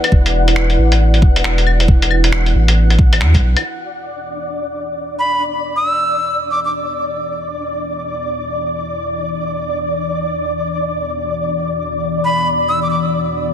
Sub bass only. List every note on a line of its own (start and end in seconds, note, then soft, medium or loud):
0.12 0.77 E1 loud
0.78 1.23 A1 medium
1.22 1.43 E1 loud
1.44 1.87 E1 medium
1.88 2.53 E1 loud
2.55 3.22 A1 medium
3.21 3.36 E2 medium
3.34 3.42 B1 medium
3.43 3.55 B1 medium